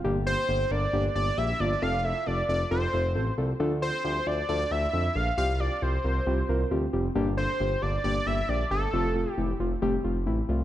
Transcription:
0.04 analog synth bass G1, synth keys A#3 D4 G4
0.27 synth keys A#3 D4 G4, analog synth lead C5
0.49 analog synth bass G1, synth keys A#3 D4 G4
0.71 analog synth bass G1, synth keys A#3 D4 A#4, analog synth lead D5
0.93 analog synth bass G1, synth keys A#3 D4 G4
1.15 analog synth bass G1, synth keys A#3 D4 G4, analog synth lead D5
1.38 analog synth bass A#1, synth keys A#3 D4 G4, analog synth lead E5
1.60 analog synth bass G1, synth keys A#3 D4 F4, analog synth lead D5
1.82 analog synth bass F1, synth keys C4 F4 A4, analog synth lead F5
2.04 synth keys C4 F4 A4, analog synth lead E5
2.27 analog synth bass F1, synth keys C4 F4 A4, analog synth lead D5
2.49 analog synth bass F1, synth keys C4 F4 A4, analog synth lead D5
2.71 analog synth bass F1, synth keys C4 F4 A4, analog synth lead C5
2.93 analog synth bass F1, synth keys C4 F4 A4
3.15 analog synth bass A1, synth keys C4 F4 A4
3.38 analog synth bass C2, synth keys C4 F4 A4
3.60 analog synth bass D2, synth keys D4 F4 A4
3.82 synth keys D4 F4 A4, analog synth lead C5
4.04 analog synth bass D2, synth keys D4 F4 G4
4.27 analog synth bass D2, synth keys D4 F4 C5, analog synth lead D5
4.49 analog synth bass D2, synth keys D4 F4 A4, analog synth lead D5
4.71 analog synth bass D2, synth keys D4 F4 A4, analog synth lead E5
4.93 analog synth bass F2, synth keys D4 F4 A4
5.15 analog synth bass A#1, synth keys D4 F4 A4, analog synth lead F5
5.38 analog synth bass C2, synth keys C4 F4 G4, analog synth lead F5
5.60 synth keys C4 F4 G4, analog synth lead D5
5.82 analog synth bass C2, synth keys C4 F4 G4, analog synth lead C5
6.04 analog synth bass C2, synth keys C4 F4 A#4
6.27 analog synth bass C2, synth keys C4 F4 G4
6.49 analog synth bass C2, synth keys C4 F4 A#4
6.71 analog synth bass D2, synth keys C4 F4 G4
6.93 analog synth bass F1, synth keys C4 F4 G4
7.15 analog synth bass G1, synth keys A#3 D4 G4
7.37 synth keys A#3 D4 A4, analog synth lead C5
7.60 analog synth bass G1, synth keys A#3 D4 G4
7.82 analog synth bass G1, synth keys A#3 D4 G4, analog synth lead D5
8.04 analog synth bass G1, synth keys A#3 D4 G4, analog synth lead D5
8.26 analog synth bass G1, synth keys A#3 D4 G4, analog synth lead E5
8.49 analog synth bass A#1, synth keys A#3 D4 G4, analog synth lead D5
8.71 analog synth bass G1, synth keys A#3 D4 G4, analog synth lead A4
8.93 analog synth bass F1, synth keys A3 C4 F4
9.15 synth keys A3 C4 F4
9.32 analog synth lead G4
9.38 analog synth bass F1, synth keys A3 C4 E4
9.60 analog synth bass F1, synth keys A3 C4 F4
9.82 analog synth bass F1, synth keys A3 C4 G4
10.04 analog synth bass F1, synth keys A3 C4 F4
10.26 analog synth bass A1, synth keys A3 C4 E4
10.49 analog synth bass C2, synth keys A3 C4 F4

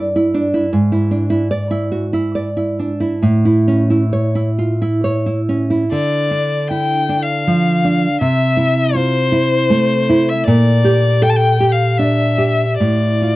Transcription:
Already playing: nylon-string guitar G2 D5
0.16 nylon-string guitar E4
0.34 nylon-string guitar D4
0.54 nylon-string guitar E4
0.73 nylon-string guitar G#2
0.92 nylon-string guitar E4
1.11 nylon-string guitar D4
1.30 nylon-string guitar E4
1.51 nylon-string guitar D5
1.71 nylon-string guitar E4
1.92 nylon-string guitar F#4
2.13 nylon-string guitar E4
2.35 nylon-string guitar D5
2.57 nylon-string guitar E4
2.79 nylon-string guitar D4
3.00 nylon-string guitar E4
3.22 nylon-string guitar A2
3.45 nylon-string guitar E4
3.68 nylon-string guitar C#4
3.90 nylon-string guitar E4
4.13 nylon-string guitar C#5
4.35 nylon-string guitar E4
4.59 nylon-string guitar F4
4.82 nylon-string guitar E4
5.04 nylon-string guitar C#5
5.26 nylon-string guitar E4
5.49 nylon-string guitar C#4
5.70 nylon-string guitar E4
5.92 nylon-string guitar D3, violin D5
6.31 nylon-string guitar D4
6.70 nylon-string guitar E4, violin G5
7.09 nylon-string guitar D4
7.23 violin F5
7.47 nylon-string guitar F3
7.84 nylon-string guitar D4
8.21 nylon-string guitar C3, violin E5
8.57 nylon-string guitar E4
8.94 nylon-string guitar F4, violin C5
9.32 nylon-string guitar E4
9.70 nylon-string guitar A3
10.10 nylon-string guitar E4
10.29 violin E5
10.46 nylon-string guitar A#2, violin D5
10.84 nylon-string guitar G4
11.22 nylon-string guitar A4, violin G5
11.29 violin A5
11.36 violin G5
11.60 nylon-string guitar G4
11.72 violin F5
11.98 nylon-string guitar D4, violin E5
12.38 nylon-string guitar G4
12.79 nylon-string guitar A2, violin D5
13.22 nylon-string guitar F4

